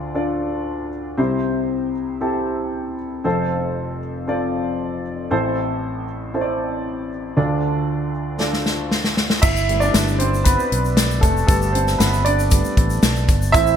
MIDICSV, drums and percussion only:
0, 0, Header, 1, 2, 480
1, 0, Start_track
1, 0, Tempo, 515021
1, 1105, Time_signature, 4, 2, 24, 8
1, 12829, End_track
2, 0, Start_track
2, 0, Title_t, "Drums"
2, 7830, Note_on_c, 9, 38, 45
2, 7923, Note_off_c, 9, 38, 0
2, 7953, Note_on_c, 9, 38, 39
2, 8046, Note_off_c, 9, 38, 0
2, 8069, Note_on_c, 9, 38, 54
2, 8163, Note_off_c, 9, 38, 0
2, 8308, Note_on_c, 9, 38, 62
2, 8402, Note_off_c, 9, 38, 0
2, 8429, Note_on_c, 9, 38, 58
2, 8522, Note_off_c, 9, 38, 0
2, 8549, Note_on_c, 9, 38, 71
2, 8642, Note_off_c, 9, 38, 0
2, 8667, Note_on_c, 9, 38, 71
2, 8760, Note_off_c, 9, 38, 0
2, 8783, Note_on_c, 9, 49, 85
2, 8787, Note_on_c, 9, 82, 57
2, 8788, Note_on_c, 9, 36, 109
2, 8876, Note_off_c, 9, 49, 0
2, 8880, Note_off_c, 9, 82, 0
2, 8881, Note_off_c, 9, 36, 0
2, 8916, Note_on_c, 9, 82, 45
2, 9009, Note_off_c, 9, 82, 0
2, 9031, Note_on_c, 9, 42, 60
2, 9125, Note_off_c, 9, 42, 0
2, 9147, Note_on_c, 9, 82, 46
2, 9241, Note_off_c, 9, 82, 0
2, 9266, Note_on_c, 9, 38, 97
2, 9266, Note_on_c, 9, 42, 87
2, 9275, Note_on_c, 9, 82, 73
2, 9359, Note_off_c, 9, 38, 0
2, 9359, Note_off_c, 9, 42, 0
2, 9369, Note_off_c, 9, 82, 0
2, 9394, Note_on_c, 9, 82, 40
2, 9487, Note_off_c, 9, 82, 0
2, 9503, Note_on_c, 9, 42, 74
2, 9596, Note_off_c, 9, 42, 0
2, 9637, Note_on_c, 9, 82, 40
2, 9731, Note_off_c, 9, 82, 0
2, 9741, Note_on_c, 9, 42, 101
2, 9747, Note_on_c, 9, 82, 59
2, 9750, Note_on_c, 9, 36, 91
2, 9834, Note_off_c, 9, 42, 0
2, 9840, Note_off_c, 9, 82, 0
2, 9843, Note_off_c, 9, 36, 0
2, 9875, Note_on_c, 9, 82, 46
2, 9968, Note_off_c, 9, 82, 0
2, 9991, Note_on_c, 9, 42, 68
2, 10084, Note_off_c, 9, 42, 0
2, 10110, Note_on_c, 9, 82, 41
2, 10204, Note_off_c, 9, 82, 0
2, 10223, Note_on_c, 9, 38, 98
2, 10225, Note_on_c, 9, 42, 85
2, 10238, Note_on_c, 9, 82, 61
2, 10317, Note_off_c, 9, 38, 0
2, 10319, Note_off_c, 9, 42, 0
2, 10331, Note_off_c, 9, 82, 0
2, 10353, Note_on_c, 9, 82, 42
2, 10447, Note_off_c, 9, 82, 0
2, 10462, Note_on_c, 9, 42, 65
2, 10465, Note_on_c, 9, 36, 87
2, 10471, Note_on_c, 9, 82, 42
2, 10555, Note_off_c, 9, 42, 0
2, 10558, Note_off_c, 9, 36, 0
2, 10564, Note_off_c, 9, 82, 0
2, 10597, Note_on_c, 9, 82, 47
2, 10691, Note_off_c, 9, 82, 0
2, 10701, Note_on_c, 9, 42, 81
2, 10704, Note_on_c, 9, 36, 116
2, 10712, Note_on_c, 9, 82, 60
2, 10794, Note_off_c, 9, 42, 0
2, 10797, Note_off_c, 9, 36, 0
2, 10805, Note_off_c, 9, 82, 0
2, 10831, Note_on_c, 9, 82, 44
2, 10924, Note_off_c, 9, 82, 0
2, 10950, Note_on_c, 9, 42, 70
2, 11044, Note_off_c, 9, 42, 0
2, 11064, Note_on_c, 9, 38, 31
2, 11072, Note_on_c, 9, 82, 49
2, 11157, Note_off_c, 9, 38, 0
2, 11165, Note_off_c, 9, 82, 0
2, 11186, Note_on_c, 9, 38, 87
2, 11186, Note_on_c, 9, 42, 77
2, 11192, Note_on_c, 9, 82, 64
2, 11279, Note_off_c, 9, 38, 0
2, 11279, Note_off_c, 9, 42, 0
2, 11286, Note_off_c, 9, 82, 0
2, 11309, Note_on_c, 9, 82, 40
2, 11402, Note_off_c, 9, 82, 0
2, 11422, Note_on_c, 9, 42, 72
2, 11515, Note_off_c, 9, 42, 0
2, 11550, Note_on_c, 9, 82, 43
2, 11644, Note_off_c, 9, 82, 0
2, 11659, Note_on_c, 9, 82, 64
2, 11660, Note_on_c, 9, 42, 92
2, 11667, Note_on_c, 9, 36, 88
2, 11752, Note_off_c, 9, 82, 0
2, 11753, Note_off_c, 9, 42, 0
2, 11760, Note_off_c, 9, 36, 0
2, 11785, Note_on_c, 9, 82, 47
2, 11878, Note_off_c, 9, 82, 0
2, 11903, Note_on_c, 9, 42, 61
2, 11904, Note_on_c, 9, 36, 83
2, 11996, Note_off_c, 9, 42, 0
2, 11997, Note_off_c, 9, 36, 0
2, 12024, Note_on_c, 9, 82, 44
2, 12117, Note_off_c, 9, 82, 0
2, 12141, Note_on_c, 9, 38, 101
2, 12144, Note_on_c, 9, 42, 88
2, 12144, Note_on_c, 9, 82, 64
2, 12235, Note_off_c, 9, 38, 0
2, 12237, Note_off_c, 9, 42, 0
2, 12237, Note_off_c, 9, 82, 0
2, 12263, Note_on_c, 9, 82, 44
2, 12357, Note_off_c, 9, 82, 0
2, 12382, Note_on_c, 9, 42, 70
2, 12383, Note_on_c, 9, 36, 91
2, 12384, Note_on_c, 9, 82, 38
2, 12475, Note_off_c, 9, 42, 0
2, 12476, Note_off_c, 9, 36, 0
2, 12477, Note_off_c, 9, 82, 0
2, 12505, Note_on_c, 9, 82, 48
2, 12599, Note_off_c, 9, 82, 0
2, 12622, Note_on_c, 9, 42, 86
2, 12622, Note_on_c, 9, 82, 62
2, 12623, Note_on_c, 9, 36, 106
2, 12715, Note_off_c, 9, 42, 0
2, 12715, Note_off_c, 9, 82, 0
2, 12716, Note_off_c, 9, 36, 0
2, 12738, Note_on_c, 9, 82, 43
2, 12829, Note_off_c, 9, 82, 0
2, 12829, End_track
0, 0, End_of_file